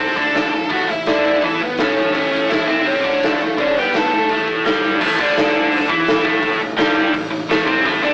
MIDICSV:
0, 0, Header, 1, 5, 480
1, 0, Start_track
1, 0, Tempo, 356930
1, 963, Time_signature, 4, 2, 24, 8
1, 10943, End_track
2, 0, Start_track
2, 0, Title_t, "Lead electric guitar"
2, 0, Program_c, 0, 29
2, 0, Note_on_c, 0, 69, 101
2, 962, Note_off_c, 0, 69, 0
2, 967, Note_on_c, 0, 66, 102
2, 1175, Note_on_c, 0, 64, 92
2, 1213, Note_off_c, 0, 66, 0
2, 1437, Note_off_c, 0, 64, 0
2, 1470, Note_on_c, 0, 64, 88
2, 1953, Note_off_c, 0, 64, 0
2, 1957, Note_on_c, 0, 69, 91
2, 2167, Note_on_c, 0, 59, 103
2, 2189, Note_off_c, 0, 69, 0
2, 2414, Note_off_c, 0, 59, 0
2, 2428, Note_on_c, 0, 61, 92
2, 2856, Note_off_c, 0, 61, 0
2, 2872, Note_on_c, 0, 61, 106
2, 3090, Note_off_c, 0, 61, 0
2, 3106, Note_on_c, 0, 61, 84
2, 3351, Note_off_c, 0, 61, 0
2, 3351, Note_on_c, 0, 64, 102
2, 3586, Note_off_c, 0, 64, 0
2, 3603, Note_on_c, 0, 64, 87
2, 3861, Note_off_c, 0, 64, 0
2, 3861, Note_on_c, 0, 61, 88
2, 4352, Note_off_c, 0, 61, 0
2, 4363, Note_on_c, 0, 57, 83
2, 4839, Note_on_c, 0, 61, 89
2, 4843, Note_off_c, 0, 57, 0
2, 5074, Note_off_c, 0, 61, 0
2, 5078, Note_on_c, 0, 59, 80
2, 5314, Note_off_c, 0, 59, 0
2, 5328, Note_on_c, 0, 59, 87
2, 5552, Note_off_c, 0, 59, 0
2, 5558, Note_on_c, 0, 57, 88
2, 5994, Note_off_c, 0, 57, 0
2, 10943, End_track
3, 0, Start_track
3, 0, Title_t, "Overdriven electric guitar"
3, 0, Program_c, 1, 29
3, 0, Note_on_c, 1, 48, 83
3, 0, Note_on_c, 1, 60, 109
3, 208, Note_off_c, 1, 48, 0
3, 213, Note_on_c, 1, 50, 90
3, 226, Note_off_c, 1, 60, 0
3, 232, Note_on_c, 1, 62, 97
3, 690, Note_off_c, 1, 50, 0
3, 696, Note_on_c, 1, 45, 72
3, 710, Note_off_c, 1, 62, 0
3, 901, Note_off_c, 1, 45, 0
3, 928, Note_on_c, 1, 45, 81
3, 949, Note_on_c, 1, 57, 92
3, 1169, Note_off_c, 1, 45, 0
3, 1185, Note_on_c, 1, 45, 75
3, 1189, Note_off_c, 1, 57, 0
3, 1386, Note_off_c, 1, 45, 0
3, 1439, Note_on_c, 1, 50, 94
3, 1446, Note_on_c, 1, 62, 86
3, 1916, Note_off_c, 1, 50, 0
3, 1919, Note_off_c, 1, 62, 0
3, 1931, Note_on_c, 1, 52, 88
3, 1938, Note_on_c, 1, 64, 103
3, 2161, Note_off_c, 1, 52, 0
3, 2165, Note_off_c, 1, 64, 0
3, 2177, Note_on_c, 1, 45, 75
3, 2364, Note_off_c, 1, 45, 0
3, 2406, Note_on_c, 1, 45, 96
3, 2438, Note_on_c, 1, 57, 118
3, 2877, Note_off_c, 1, 45, 0
3, 2890, Note_off_c, 1, 57, 0
3, 2893, Note_on_c, 1, 45, 94
3, 2906, Note_on_c, 1, 57, 102
3, 3585, Note_off_c, 1, 45, 0
3, 3590, Note_on_c, 1, 48, 93
3, 3600, Note_off_c, 1, 57, 0
3, 3606, Note_on_c, 1, 60, 99
3, 4070, Note_off_c, 1, 48, 0
3, 4076, Note_on_c, 1, 50, 91
3, 4082, Note_off_c, 1, 60, 0
3, 4093, Note_on_c, 1, 62, 88
3, 4558, Note_off_c, 1, 50, 0
3, 4567, Note_off_c, 1, 62, 0
3, 4588, Note_on_c, 1, 45, 70
3, 4773, Note_off_c, 1, 45, 0
3, 4806, Note_on_c, 1, 50, 90
3, 4823, Note_on_c, 1, 62, 100
3, 5044, Note_off_c, 1, 50, 0
3, 5052, Note_off_c, 1, 62, 0
3, 5082, Note_on_c, 1, 55, 100
3, 5092, Note_on_c, 1, 67, 112
3, 5301, Note_off_c, 1, 55, 0
3, 5307, Note_off_c, 1, 67, 0
3, 5316, Note_on_c, 1, 57, 83
3, 5338, Note_on_c, 1, 69, 86
3, 5779, Note_off_c, 1, 57, 0
3, 5787, Note_on_c, 1, 45, 97
3, 5790, Note_off_c, 1, 69, 0
3, 5810, Note_on_c, 1, 57, 94
3, 6243, Note_on_c, 1, 43, 97
3, 6254, Note_off_c, 1, 45, 0
3, 6257, Note_on_c, 1, 55, 120
3, 6266, Note_off_c, 1, 57, 0
3, 6722, Note_off_c, 1, 43, 0
3, 6727, Note_on_c, 1, 45, 82
3, 6729, Note_off_c, 1, 55, 0
3, 6734, Note_on_c, 1, 57, 96
3, 6964, Note_off_c, 1, 45, 0
3, 6968, Note_off_c, 1, 57, 0
3, 6982, Note_on_c, 1, 50, 104
3, 7003, Note_on_c, 1, 62, 115
3, 7908, Note_off_c, 1, 50, 0
3, 7913, Note_on_c, 1, 52, 93
3, 7931, Note_off_c, 1, 62, 0
3, 7936, Note_on_c, 1, 64, 107
3, 8389, Note_off_c, 1, 52, 0
3, 8394, Note_on_c, 1, 45, 99
3, 8406, Note_off_c, 1, 64, 0
3, 8416, Note_on_c, 1, 57, 96
3, 8874, Note_off_c, 1, 45, 0
3, 8885, Note_off_c, 1, 57, 0
3, 8890, Note_on_c, 1, 45, 81
3, 9081, Note_off_c, 1, 45, 0
3, 9100, Note_on_c, 1, 43, 80
3, 9111, Note_on_c, 1, 55, 108
3, 9583, Note_on_c, 1, 45, 72
3, 9585, Note_off_c, 1, 43, 0
3, 9590, Note_off_c, 1, 55, 0
3, 9786, Note_off_c, 1, 45, 0
3, 9825, Note_on_c, 1, 45, 76
3, 10026, Note_off_c, 1, 45, 0
3, 10073, Note_on_c, 1, 45, 102
3, 10097, Note_on_c, 1, 57, 115
3, 10279, Note_off_c, 1, 45, 0
3, 10284, Note_on_c, 1, 48, 98
3, 10303, Note_off_c, 1, 57, 0
3, 10309, Note_on_c, 1, 60, 110
3, 10535, Note_off_c, 1, 48, 0
3, 10548, Note_off_c, 1, 60, 0
3, 10555, Note_on_c, 1, 45, 101
3, 10578, Note_on_c, 1, 57, 110
3, 10786, Note_off_c, 1, 45, 0
3, 10791, Note_on_c, 1, 50, 115
3, 10801, Note_off_c, 1, 57, 0
3, 10807, Note_on_c, 1, 62, 124
3, 10943, Note_off_c, 1, 50, 0
3, 10943, Note_off_c, 1, 62, 0
3, 10943, End_track
4, 0, Start_track
4, 0, Title_t, "Picked electric bass"
4, 0, Program_c, 2, 34
4, 0, Note_on_c, 2, 36, 92
4, 195, Note_off_c, 2, 36, 0
4, 226, Note_on_c, 2, 38, 89
4, 680, Note_off_c, 2, 38, 0
4, 698, Note_on_c, 2, 33, 77
4, 933, Note_off_c, 2, 33, 0
4, 945, Note_on_c, 2, 33, 92
4, 1177, Note_off_c, 2, 33, 0
4, 1200, Note_on_c, 2, 33, 84
4, 1425, Note_off_c, 2, 33, 0
4, 1446, Note_on_c, 2, 38, 93
4, 1893, Note_off_c, 2, 38, 0
4, 1915, Note_on_c, 2, 40, 102
4, 2140, Note_off_c, 2, 40, 0
4, 2148, Note_on_c, 2, 33, 85
4, 2380, Note_off_c, 2, 33, 0
4, 2402, Note_on_c, 2, 33, 98
4, 2852, Note_off_c, 2, 33, 0
4, 2900, Note_on_c, 2, 33, 102
4, 3566, Note_off_c, 2, 33, 0
4, 3620, Note_on_c, 2, 36, 90
4, 4064, Note_off_c, 2, 36, 0
4, 4098, Note_on_c, 2, 38, 95
4, 4543, Note_off_c, 2, 38, 0
4, 4601, Note_on_c, 2, 33, 77
4, 4808, Note_off_c, 2, 33, 0
4, 4816, Note_on_c, 2, 38, 107
4, 5039, Note_off_c, 2, 38, 0
4, 5071, Note_on_c, 2, 43, 85
4, 5287, Note_off_c, 2, 43, 0
4, 5314, Note_on_c, 2, 45, 101
4, 5752, Note_off_c, 2, 45, 0
4, 5778, Note_on_c, 2, 33, 101
4, 6224, Note_off_c, 2, 33, 0
4, 6277, Note_on_c, 2, 31, 89
4, 6713, Note_off_c, 2, 31, 0
4, 6743, Note_on_c, 2, 33, 104
4, 6963, Note_off_c, 2, 33, 0
4, 6980, Note_on_c, 2, 38, 100
4, 7882, Note_off_c, 2, 38, 0
4, 7929, Note_on_c, 2, 40, 94
4, 8376, Note_off_c, 2, 40, 0
4, 8404, Note_on_c, 2, 33, 105
4, 8852, Note_off_c, 2, 33, 0
4, 8905, Note_on_c, 2, 33, 86
4, 9120, Note_off_c, 2, 33, 0
4, 9134, Note_on_c, 2, 31, 104
4, 9576, Note_off_c, 2, 31, 0
4, 9605, Note_on_c, 2, 33, 87
4, 9828, Note_off_c, 2, 33, 0
4, 9835, Note_on_c, 2, 33, 91
4, 10055, Note_off_c, 2, 33, 0
4, 10063, Note_on_c, 2, 33, 97
4, 10295, Note_off_c, 2, 33, 0
4, 10322, Note_on_c, 2, 36, 110
4, 10544, Note_off_c, 2, 36, 0
4, 10564, Note_on_c, 2, 33, 106
4, 10785, Note_off_c, 2, 33, 0
4, 10803, Note_on_c, 2, 38, 105
4, 10943, Note_off_c, 2, 38, 0
4, 10943, End_track
5, 0, Start_track
5, 0, Title_t, "Drums"
5, 229, Note_on_c, 9, 36, 77
5, 232, Note_on_c, 9, 46, 51
5, 363, Note_off_c, 9, 36, 0
5, 367, Note_off_c, 9, 46, 0
5, 462, Note_on_c, 9, 46, 65
5, 478, Note_on_c, 9, 38, 101
5, 597, Note_off_c, 9, 46, 0
5, 613, Note_off_c, 9, 38, 0
5, 713, Note_on_c, 9, 46, 50
5, 847, Note_off_c, 9, 46, 0
5, 937, Note_on_c, 9, 46, 69
5, 947, Note_on_c, 9, 36, 106
5, 1072, Note_off_c, 9, 46, 0
5, 1081, Note_off_c, 9, 36, 0
5, 1192, Note_on_c, 9, 46, 53
5, 1327, Note_off_c, 9, 46, 0
5, 1426, Note_on_c, 9, 46, 76
5, 1442, Note_on_c, 9, 38, 98
5, 1560, Note_off_c, 9, 46, 0
5, 1577, Note_off_c, 9, 38, 0
5, 1669, Note_on_c, 9, 46, 54
5, 1804, Note_off_c, 9, 46, 0
5, 1906, Note_on_c, 9, 46, 70
5, 1914, Note_on_c, 9, 36, 83
5, 2041, Note_off_c, 9, 46, 0
5, 2049, Note_off_c, 9, 36, 0
5, 2144, Note_on_c, 9, 46, 50
5, 2157, Note_on_c, 9, 36, 77
5, 2279, Note_off_c, 9, 46, 0
5, 2291, Note_off_c, 9, 36, 0
5, 2387, Note_on_c, 9, 46, 72
5, 2403, Note_on_c, 9, 38, 105
5, 2522, Note_off_c, 9, 46, 0
5, 2538, Note_off_c, 9, 38, 0
5, 2653, Note_on_c, 9, 46, 57
5, 2788, Note_off_c, 9, 46, 0
5, 2884, Note_on_c, 9, 46, 75
5, 2893, Note_on_c, 9, 36, 104
5, 3018, Note_off_c, 9, 46, 0
5, 3027, Note_off_c, 9, 36, 0
5, 3134, Note_on_c, 9, 46, 56
5, 3268, Note_off_c, 9, 46, 0
5, 3371, Note_on_c, 9, 46, 79
5, 3387, Note_on_c, 9, 38, 101
5, 3505, Note_off_c, 9, 46, 0
5, 3521, Note_off_c, 9, 38, 0
5, 3625, Note_on_c, 9, 46, 52
5, 3759, Note_off_c, 9, 46, 0
5, 3856, Note_on_c, 9, 46, 85
5, 3858, Note_on_c, 9, 36, 83
5, 3990, Note_off_c, 9, 46, 0
5, 3993, Note_off_c, 9, 36, 0
5, 4100, Note_on_c, 9, 36, 77
5, 4100, Note_on_c, 9, 46, 52
5, 4235, Note_off_c, 9, 36, 0
5, 4235, Note_off_c, 9, 46, 0
5, 4344, Note_on_c, 9, 46, 69
5, 4360, Note_on_c, 9, 38, 99
5, 4479, Note_off_c, 9, 46, 0
5, 4495, Note_off_c, 9, 38, 0
5, 4578, Note_on_c, 9, 46, 53
5, 4713, Note_off_c, 9, 46, 0
5, 4815, Note_on_c, 9, 46, 71
5, 4820, Note_on_c, 9, 36, 103
5, 4950, Note_off_c, 9, 46, 0
5, 4955, Note_off_c, 9, 36, 0
5, 5065, Note_on_c, 9, 46, 54
5, 5200, Note_off_c, 9, 46, 0
5, 5295, Note_on_c, 9, 46, 71
5, 5311, Note_on_c, 9, 38, 111
5, 5429, Note_off_c, 9, 46, 0
5, 5445, Note_off_c, 9, 38, 0
5, 5542, Note_on_c, 9, 46, 53
5, 5676, Note_off_c, 9, 46, 0
5, 5763, Note_on_c, 9, 46, 68
5, 5775, Note_on_c, 9, 36, 85
5, 5897, Note_off_c, 9, 46, 0
5, 5910, Note_off_c, 9, 36, 0
5, 6019, Note_on_c, 9, 46, 46
5, 6020, Note_on_c, 9, 36, 88
5, 6153, Note_off_c, 9, 46, 0
5, 6155, Note_off_c, 9, 36, 0
5, 6253, Note_on_c, 9, 46, 68
5, 6269, Note_on_c, 9, 38, 102
5, 6387, Note_off_c, 9, 46, 0
5, 6403, Note_off_c, 9, 38, 0
5, 6493, Note_on_c, 9, 46, 57
5, 6627, Note_off_c, 9, 46, 0
5, 6740, Note_on_c, 9, 36, 104
5, 6744, Note_on_c, 9, 49, 123
5, 6875, Note_off_c, 9, 36, 0
5, 6879, Note_off_c, 9, 49, 0
5, 6978, Note_on_c, 9, 36, 106
5, 7113, Note_off_c, 9, 36, 0
5, 7213, Note_on_c, 9, 46, 68
5, 7229, Note_on_c, 9, 38, 102
5, 7348, Note_off_c, 9, 46, 0
5, 7364, Note_off_c, 9, 38, 0
5, 7687, Note_on_c, 9, 46, 69
5, 7821, Note_off_c, 9, 46, 0
5, 7929, Note_on_c, 9, 36, 103
5, 8063, Note_off_c, 9, 36, 0
5, 8166, Note_on_c, 9, 46, 59
5, 8182, Note_on_c, 9, 38, 112
5, 8300, Note_off_c, 9, 46, 0
5, 8316, Note_off_c, 9, 38, 0
5, 8404, Note_on_c, 9, 36, 114
5, 8538, Note_off_c, 9, 36, 0
5, 8643, Note_on_c, 9, 46, 61
5, 8645, Note_on_c, 9, 36, 109
5, 8777, Note_off_c, 9, 46, 0
5, 8780, Note_off_c, 9, 36, 0
5, 9112, Note_on_c, 9, 46, 65
5, 9129, Note_on_c, 9, 38, 115
5, 9247, Note_off_c, 9, 46, 0
5, 9263, Note_off_c, 9, 38, 0
5, 9604, Note_on_c, 9, 36, 96
5, 9611, Note_on_c, 9, 46, 68
5, 9739, Note_off_c, 9, 36, 0
5, 9746, Note_off_c, 9, 46, 0
5, 10086, Note_on_c, 9, 46, 66
5, 10102, Note_on_c, 9, 38, 114
5, 10220, Note_off_c, 9, 46, 0
5, 10236, Note_off_c, 9, 38, 0
5, 10324, Note_on_c, 9, 36, 110
5, 10458, Note_off_c, 9, 36, 0
5, 10564, Note_on_c, 9, 36, 111
5, 10576, Note_on_c, 9, 46, 63
5, 10698, Note_off_c, 9, 36, 0
5, 10711, Note_off_c, 9, 46, 0
5, 10943, End_track
0, 0, End_of_file